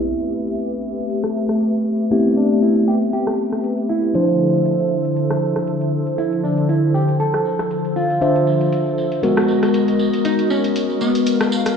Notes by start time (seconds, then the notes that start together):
Already playing: A3 B3 C4 E4 G4 B4 E5
0.08 closed hi-hat
0.22 closed hi-hat
0.47 closed hi-hat
0.59 closed hi-hat
0.81 D4
0.98 closed hi-hat
1.10 closed hi-hat
1.24 cross-stick
1.49 cross-stick, closed hi-hat
1.61 closed hi-hat
1.75 closed hi-hat
2.00 closed hi-hat
2.11 A3 B3 C4 E4 G4, closed hi-hat
2.25 closed hi-hat
2.37 D4
2.51 closed hi-hat
2.62 E4, closed hi-hat
2.88 G4
3.02 closed hi-hat
3.13 G4, closed hi-hat
3.27 cross-stick
3.52 cross-stick, closed hi-hat
3.64 closed hi-hat
3.78 closed hi-hat
3.89 E4
4.03 closed hi-hat
4.15 D3 F3 D4 E4 A4 C5, closed hi-hat
4.29 closed hi-hat
4.54 closed hi-hat
4.66 closed hi-hat
4.80 closed hi-hat
5.05 closed hi-hat
5.17 closed hi-hat
5.31 cross-stick, closed hi-hat
5.56 cross-stick, closed hi-hat
5.67 closed hi-hat
5.81 closed hi-hat
6.07 closed hi-hat
6.18 E4, closed hi-hat, tambourine
6.32 closed hi-hat
6.44 D4, tambourine
6.57 closed hi-hat, tambourine
6.69 E4, closed hi-hat, tambourine
6.82 tambourine
6.94 G4, tambourine
7.08 closed hi-hat, tambourine
7.20 A4, closed hi-hat, tambourine
7.34 cross-stick, tambourine
7.45 tambourine
7.59 cross-stick, closed hi-hat, tambourine
7.71 closed hi-hat, tambourine
7.85 closed hi-hat, tambourine
7.96 F4, tambourine
8.10 closed hi-hat, tambourine
8.21 D4 F4 C5 E5, closed hi-hat, tambourine
8.35 closed hi-hat, tambourine
8.47 tambourine
8.61 closed hi-hat, tambourine
8.72 closed hi-hat, tambourine
8.86 tambourine
8.98 tambourine
9.11 closed hi-hat, tambourine
9.23 G#3 B3 F#4 A#4 D#5, closed hi-hat, tambourine
9.37 cross-stick, tambourine
9.48 tambourine
9.63 cross-stick, closed hi-hat, tambourine
9.74 closed hi-hat, tambourine
9.88 closed hi-hat, tambourine
9.99 tambourine
10.13 closed hi-hat, tambourine
10.25 D#4, closed hi-hat, tambourine
10.39 closed hi-hat, tambourine
10.50 C#4, tambourine
10.64 closed hi-hat, tambourine
10.76 closed hi-hat, tambourine
10.90 tambourine
11.01 B3, tambourine
11.15 closed hi-hat, tambourine
11.26 F5, closed hi-hat, tambourine
11.41 cross-stick, tambourine
11.52 tambourine
11.66 cross-stick, closed hi-hat, tambourine